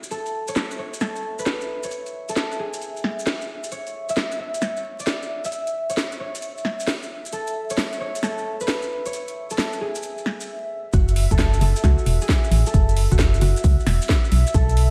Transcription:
Already playing: F#4 A4 E5
0.03 closed hi-hat, maracas
0.11 A4, closed hi-hat, maracas
0.26 closed hi-hat, maracas
0.48 C#5, closed hi-hat, maracas
0.56 snare, maracas
0.71 closed hi-hat, maracas
0.79 C#5
0.94 closed hi-hat, maracas
1.01 A4, snare, closed hi-hat, maracas
1.16 maracas
1.39 B4, maracas
1.46 snare, maracas
1.61 maracas
1.83 C#5, closed hi-hat, maracas
1.91 closed hi-hat, maracas
2.06 closed hi-hat, maracas
2.29 A4, closed hi-hat, maracas
2.36 snare, maracas
2.52 closed hi-hat, maracas
2.59 G#4
2.74 closed hi-hat, maracas
2.82 closed hi-hat, maracas
2.97 maracas
3.04 snare
3.19 maracas
3.26 snare, maracas
3.41 maracas
3.64 closed hi-hat, maracas
3.72 C#5, closed hi-hat, maracas
3.87 closed hi-hat, maracas
4.09 E5, closed hi-hat, maracas
4.16 snare, maracas
4.32 closed hi-hat, maracas
4.39 E5
4.54 closed hi-hat, maracas
4.62 C#5, snare, closed hi-hat, maracas
4.77 maracas
4.99 D5, maracas
5.06 snare, maracas
5.22 maracas
5.45 E5, closed hi-hat, maracas
5.52 closed hi-hat, maracas
5.67 closed hi-hat, maracas
5.90 C#5, closed hi-hat, maracas
5.97 snare, maracas
6.12 closed hi-hat, maracas
6.20 C#5
6.35 closed hi-hat, maracas
6.42 closed hi-hat, maracas
6.58 maracas
6.65 snare
6.80 maracas
6.87 snare, maracas
7.03 maracas
7.25 closed hi-hat, maracas
7.32 A4, closed hi-hat, maracas
7.47 closed hi-hat, maracas
7.70 C#5, closed hi-hat, maracas
7.78 snare, maracas
7.93 closed hi-hat, maracas
8.01 C#5
8.15 closed hi-hat, maracas
8.23 A4, snare, closed hi-hat, maracas
8.38 maracas
8.60 B4, maracas
8.67 snare, maracas
8.82 maracas
9.06 C#5, closed hi-hat, maracas
9.13 closed hi-hat, maracas
9.28 closed hi-hat, maracas
9.50 A4, closed hi-hat, maracas
9.58 snare, maracas
9.73 closed hi-hat, maracas
9.81 G#4
9.95 closed hi-hat, maracas
10.03 closed hi-hat, maracas
10.18 maracas
10.26 snare
10.41 maracas
10.93 F#1 F#4 E5, kick, closed hi-hat, maracas
11.08 closed hi-hat, maracas
11.16 open hi-hat
11.31 F#1 A4, kick, closed hi-hat, maracas
11.39 kick, snare, maracas
11.54 closed hi-hat, maracas
11.61 F#1 A4, open hi-hat
11.76 closed hi-hat, maracas
11.84 C#2 F#4, kick, snare, closed hi-hat, maracas
11.98 maracas
12.06 E1, open hi-hat
12.21 G#4, maracas
12.29 kick, snare, maracas
12.44 maracas
12.51 A1, open hi-hat
12.66 A4, closed hi-hat, maracas
12.74 F#1, kick, closed hi-hat, maracas
12.89 closed hi-hat, maracas
12.97 open hi-hat
13.12 F#1 F#4, kick, closed hi-hat, maracas
13.19 kick, snare, maracas
13.34 closed hi-hat, maracas
13.41 F#1 F#4, open hi-hat
13.56 closed hi-hat, maracas
13.64 C#2, kick, open hi-hat, maracas
13.80 maracas
13.87 E1, snare, open hi-hat
14.02 maracas
14.09 kick, snare, maracas
14.25 maracas
14.32 B1, open hi-hat
14.47 closed hi-hat, maracas
14.54 B1 A4, kick, closed hi-hat, maracas
14.69 closed hi-hat, maracas
14.77 open hi-hat

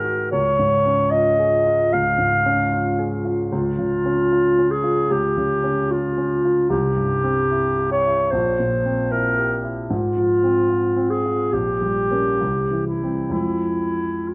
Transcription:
Already playing: G#2 D#3 D#4 F#4 G#4 A#4
0.04 F#4
0.31 C#2 C#5
0.59 G#2
0.86 C#4
1.11 F4 D#5
1.39 G#4
1.66 F4
1.93 C#2 F5
2.18 G#2
2.46 C#4
2.72 F4
2.99 G#4
3.25 F4
3.51 C#2 F4
3.79 C#3
4.05 C#4
4.32 F4
4.58 C#4
4.71 G#4
4.84 F4
5.10 C#2 G4
5.37 C#3
5.64 C#4
5.91 F4
6.18 C#4
6.45 F4
6.70 C2 G4
6.97 G2
7.24 C4
7.51 E4
7.78 G4
7.91 C#5
8.06 E4
8.31 A#1 C5
8.59 A#2
8.85 C4
9.11 E4 A#4
9.38 G4
9.64 E4
9.90 G#2 F4
10.17 F3
10.43 C4
10.70 F4
10.96 C4
11.10 G#4
11.25 F4
11.53 A#1 G4
11.82 G3
12.11 A#3 C#4
12.41 C2
12.71 E3
12.87 E4
13.03 G3 C4
13.29 F2 F3 G#3 C4 E4
14.28 F4

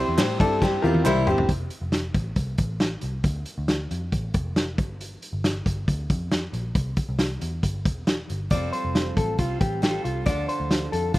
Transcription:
Already playing: E4 G4 C5
0.00 C4 E4
0.08 E2
0.17 A2 C3 G3 C4 E4 G4 C5, snare, clap, ride
0.40 G2 E4 G4 A4 D5, kick, ride
0.44 C4
0.61 G3 C4 E4 G4 C5, kick, snare
0.82 E2 E4 F4 G4 A#4, high tom
0.87 C4
0.94 high tom
1.04 C2 C3 G3 C4 E4 G4 C5, clap, mid tom
1.26 G1 E4 G4 C5, floor tom
1.30 C4
1.38 floor tom
1.49 F1, kick, closed hi-hat
1.70 closed hi-hat
1.81 F1
1.92 snare, closed hi-hat
2.14 A1, kick, closed hi-hat
2.36 C2, kick, closed hi-hat
2.58 A1, kick, closed hi-hat
2.80 snare, closed hi-hat
3.01 C2, closed hi-hat
3.24 D2, kick, closed hi-hat
3.45 closed hi-hat
3.58 D2
3.68 snare, closed hi-hat
3.91 F2, closed hi-hat
4.12 A1, kick, closed hi-hat
4.34 F1, kick, closed hi-hat
4.56 snare, closed hi-hat
4.78 G1, kick, closed hi-hat
5.01 closed hi-hat
5.22 closed hi-hat
5.33 G1
5.44 snare, closed hi-hat
5.66 G1, kick, closed hi-hat
5.88 D2, kick, closed hi-hat
6.10 F2, kick, closed hi-hat
6.31 snare, closed hi-hat
6.53 A#1, closed hi-hat
6.75 C2, kick, closed hi-hat
6.97 kick, closed hi-hat
7.09 C2
7.19 snare, closed hi-hat
7.41 E2, closed hi-hat
7.63 G1, kick, closed hi-hat
7.85 E1, kick, closed hi-hat
8.07 snare, closed hi-hat
8.30 G1, closed hi-hat
8.50 F1 F3 G3 C4 F4 D5, kick, closed hi-hat
8.55 A4
8.73 C5, closed hi-hat
8.84 F1
8.95 snare, closed hi-hat
9.17 A1 A4, kick, closed hi-hat
9.38 C2 G3 C4 F4 A4, kick, closed hi-hat
9.61 A1 G4, kick, closed hi-hat
9.82 G3 C4 F4 G4 A4, snare, closed hi-hat
10.04 C2 F4, closed hi-hat
10.26 D2 D3 F3 D4 F4 D5, kick, closed hi-hat
10.30 A4
10.49 C5, closed hi-hat
10.60 D2
10.71 snare, closed hi-hat
10.92 F2 A4, closed hi-hat
11.14 A1 F3 D4 F4, kick, closed hi-hat

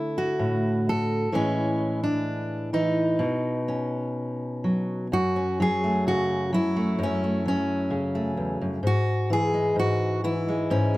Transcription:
Already playing: D3 A3 D4 E4
0.18 F#4
0.39 A2
0.89 A4
1.32 A2 E3 G#3 C#4
2.04 D4
2.73 E3 D#4
3.19 B2
3.68 C#4
4.64 F#3
5.12 F#2 F#4
5.36 C#4
5.60 F#3 G#4
5.84 A3
6.07 C#3 F#4
6.53 F#3 E4
6.76 A3
6.99 F#2
7.03 C#4
7.24 A3
7.46 F#3 C#4
7.90 C#3
8.15 A3
8.37 E2
8.61 F#2
8.83 G#2
8.87 F#4
9.30 E3 G#4
9.54 G#3
9.76 G#2 F#4
10.24 E3 E4
10.49 G#3
10.70 G#2 C#4
10.94 G#3

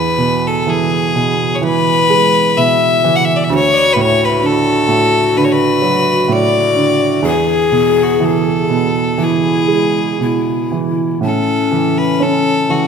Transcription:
Already playing: E2 B4
0.18 B2
0.47 A4
0.67 E3 G#4
1.15 B2
1.55 C#5
1.62 E3 B4
2.10 G#3
2.57 B2 E5
3.04 E3
3.16 F#5
3.24 E5
3.36 D5
3.44 E5
3.50 D2 F#4
3.54 C#5
3.73 C#5 D5
3.93 A2 B4
4.01 C#5
4.24 B4
4.41 D3
4.46 A4
4.88 A2
5.36 D3 B4
5.44 C#5
5.52 B4
5.82 F#3
6.28 A2
6.33 D5
6.75 D3
7.22 E2 G#4
7.29 G#4
7.71 B2
8.02 F#4
8.20 E3
8.24 A4
8.70 B2
9.18 E3 E4
9.23 G#4
9.68 G#3
10.20 B2 E4
10.72 E3
11.21 A2 C#4 A4
11.72 E3
11.98 B4
12.20 C#4 A4
12.69 E3 F#4

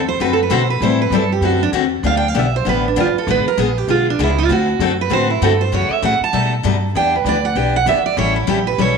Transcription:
Already playing: E2
0.09 C5
0.20 F#2 D3 A3 C4 F#4 A4 B4
0.33 A4
0.43 B4
0.50 B2 D3 A3 C4 F#4 A4 C5
0.70 B4
0.81 A2 E3 G3 C4 E4 A4 C5
1.02 B4
1.10 G2 E3 G3 C4 E4 A4
1.15 A4
1.32 G4
1.41 F#2 D3 A3 C4 F#4 A4
1.45 F#4
1.63 D4
1.72 E2 D3 A3 C4 F#4 A4
2.03 D2 D3 F3 B3 D4 G4 F5
2.17 G5
2.28 F5
2.34 B1 D3 F3 B3 D4 G4
2.39 E5
2.56 C5
2.65 A1 D3 F3 B3 D4 G4 B4
2.88 D4
2.96 G1 D3 F3 B3 D4 G4
3.00 F4
3.15 A4, muted upright bass stroke
3.27 G#1 D3 G#3 B3 F4 G#4 B4
3.45 A#4, muted upright bass stroke
3.57 A#1 D3 G#3 B3 F4 G#4
3.78 G4
3.88 B1 D3 G#3 B3 F4 G#4
4.10 D4
4.19 C#2 D3 G#3 B3 F4 G#4
4.23 E4
4.38 F4
4.49 D2 D3 A3 C4 F#4 A4
4.79 F#2 D3 A3 C4 F#4 A4
5.01 B4
5.10 A2 D3 A3 C4 F#4 A4 C5
5.30 E4
5.41 G2 D3 A3 C4 F#4 A4
5.61 C5
5.72 F#2 C#3 E3 A3 C#4 F#4 C#5
5.90 E5, muted upright bass stroke
6.02 A2 C#3 E3 A3 C#4 F#4 F#5
6.20 A5, muted upright bass stroke
6.33 B2 G3 A3 D#4 A4
6.63 G2 B2 G3 A3 D#4 A4
6.95 E2 E3 B3 D4 G4 G5
7.16 B4
7.24 D2 E3 B3 D4 G4
7.29 D5
7.45 F#5
7.55 B1 E3 B3 D4 G4 G5
7.76 F#5
7.86 G1 E3 B3 D4 G4 E5
8.06 D5
8.17 A1 E3 G3 C#4 E4 A4 C#5
8.36 E4
8.47 A#1 E3 G3 C#4 E4 G4 A4
8.67 B4
8.78 B1 E3 G3 C#4 E4 A4 C#5

